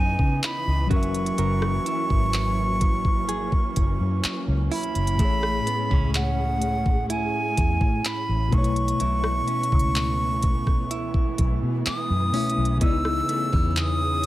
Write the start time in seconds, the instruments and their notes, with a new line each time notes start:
Already playing: fingered electric bass F#2, tine electric piano C#3 B3 E4 D#5, string section C#3 E3 B3 D#5, clean electric guitar C#3 B3 D#4, flute G#5
0.19 fingered electric bass C#3, kick
0.43 flute B5, clap, closed hi-hat
0.67 fingered electric bass C#2
0.87 tine electric piano F#3 C#4, clean electric guitar F#3
0.91 fingered electric bass F#1, string section F#3 A#3 C#4, tine electric piano A#4, flute C#6, kick, closed hi-hat
0.96 tine electric piano E5
1.03 closed hi-hat
1.14 closed hi-hat
1.26 closed hi-hat
1.38 fingered electric bass F#1, clean electric guitar F#3 A#4, closed hi-hat
1.62 cross-stick
1.86 clean electric guitar E4, closed hi-hat
2.10 fingered electric bass G#1, kick
2.33 clap, closed hi-hat
2.81 kick, closed hi-hat
3.05 kick
3.29 clean electric guitar G#4, closed hi-hat
3.52 kick
3.76 fingered electric bass F#1, kick, closed hi-hat
4.00 fingered electric bass F#2
4.24 muted fingered electric bass stroke, clap, closed hi-hat
4.48 fingered electric bass C#2
4.71 clean electric guitar E4, flute B5, closed hi-hat, open hi-hat
4.83 closed hi-hat
4.95 fingered electric bass F#1, closed hi-hat
5.07 closed hi-hat
5.15 tine electric piano A2 A3, string section A3, kick, closed hi-hat
5.19 fingered electric bass A1, clean electric guitar A2 E4, string section G#4, tine electric piano G#4
5.25 tine electric piano C#5
5.43 cross-stick
5.67 clean electric guitar B3, closed hi-hat
5.91 fingered electric bass C#2, clean electric guitar C#4, kick
6.14 flute F#5, clap, closed hi-hat
6.62 closed hi-hat
6.86 kick
7.10 clean electric guitar E4, flute G#5, closed hi-hat
7.57 fingered electric bass E2, kick, closed hi-hat
7.81 fingered electric bass A2, kick
8.05 flute B5, clap, closed hi-hat
8.29 fingered electric bass A1
8.48 tine electric piano B2 A3, string section E3
8.52 fingered electric bass B1, clean electric guitar B2, string section A3 B3, tine electric piano D#4, flute C#6, kick, closed hi-hat
8.58 tine electric piano E4 C#5
8.64 closed hi-hat
8.76 closed hi-hat
8.88 closed hi-hat
9.00 fingered electric bass B1, clean electric guitar B2 E4, closed hi-hat
9.24 cross-stick
9.48 clean electric guitar C#4, closed hi-hat
9.63 closed hi-hat
9.72 fingered electric bass C#2, kick
9.79 closed hi-hat
9.95 clap, closed hi-hat
10.43 kick, closed hi-hat
10.67 kick, cross-stick
10.91 clean electric guitar E4, closed hi-hat
11.14 kick
11.38 fingered electric bass B1, kick, closed hi-hat
11.62 fingered electric bass B2
11.86 flute D#6, muted fingered electric bass stroke, clap, closed hi-hat
12.10 fingered electric bass F#2
12.32 tine electric piano B2 A3 E4, clean electric guitar C#4, closed hi-hat, open hi-hat
12.37 tine electric piano E5
12.50 closed hi-hat
12.58 fingered electric bass B1
12.65 closed hi-hat
12.77 tine electric piano C#3 B3
12.81 fingered electric bass C#2, clean electric guitar C#3 D#4, string section C#3 C#4, tine electric piano E4, flute E6, kick, closed hi-hat
12.86 tine electric piano D5
12.93 tine electric piano D#4
13.05 cross-stick
13.29 clean electric guitar A3, closed hi-hat
13.52 fingered electric bass E2, clean electric guitar B3, kick
13.71 flute E6
13.76 flute D#6, clap, closed hi-hat